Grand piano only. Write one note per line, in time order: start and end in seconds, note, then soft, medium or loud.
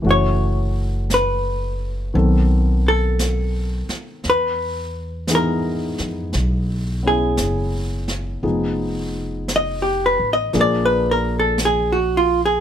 0.02 2.13 E3 soft
0.02 2.14 A3 soft
0.02 2.15 C#4 soft
0.06 2.15 F#4 soft
2.14 4.24 D#3 soft
2.14 4.24 B3 soft
2.14 4.24 C4 soft
2.14 4.25 A4 soft
5.28 8.44 E3 soft
5.28 7.01 B3 soft
5.28 8.42 D#4 soft
5.28 8.42 G#4 soft
7.03 8.41 B3 soft
7.03 8.44 C#4 soft
7.03 8.45 E4 soft
8.43 10.52 F3 soft
8.43 10.54 B3 soft
8.43 10.54 D#4 soft
8.43 10.53 G#4 soft
10.53 12.60 F3 soft
10.53 12.60 A#3 soft
10.53 12.60 D4 soft
10.53 12.60 G#4 medium